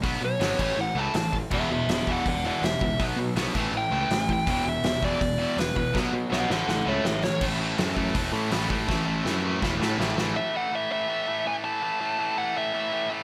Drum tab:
CC |---x----|x-------|---x----|--------|
HH |o-o---o-|--o-o-o-|o-o---o-|o-o-o-o-|
SD |--o---o-|--o---o-|--o---o-|--o---o-|
BD |o--o---o|o--oo--o|o--o---o|o--oo--o|

CC |--------|x-------|--------|--------|
HH |--------|--o-o-o-|--------|--------|
SD |o-ooo-oo|--o---o-|o-o-oooo|--------|
BD |o-------|o--oo--o|o---o---|--------|

CC |--------|
HH |--------|
SD |--------|
BD |--------|